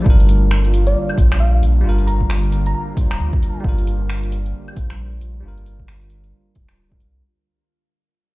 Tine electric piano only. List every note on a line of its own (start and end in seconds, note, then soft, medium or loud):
0.02 1.12 G3 medium
0.02 1.14 D4 medium
0.07 1.16 F4 medium
0.07 1.18 A#4 loud
1.13 1.79 G3 medium
1.13 1.82 D4 medium
1.18 1.83 F4 medium
1.18 1.85 C5 medium
1.81 2.92 G3 loud
1.81 2.94 D4 medium
1.86 2.95 F4 medium
1.86 2.97 A#4 loud
2.93 3.59 G3 medium
2.93 3.61 D4 medium
2.98 3.63 F4 medium
2.98 3.64 C5 medium
3.60 4.72 G3 medium
3.60 4.74 D4 medium
3.66 4.75 F4 medium
3.66 4.76 A#4 loud
4.73 5.39 G3 medium
4.73 5.41 D4 medium
4.78 5.42 F4 medium
4.78 5.44 C5 medium
5.40 6.52 G3 medium
5.40 6.53 D4 medium
5.46 6.54 F4 medium
5.46 6.55 A#4 loud
6.89 7.19 G3 medium
6.89 7.20 D4 medium
6.89 7.21 F4 medium
6.94 7.22 A#4 medium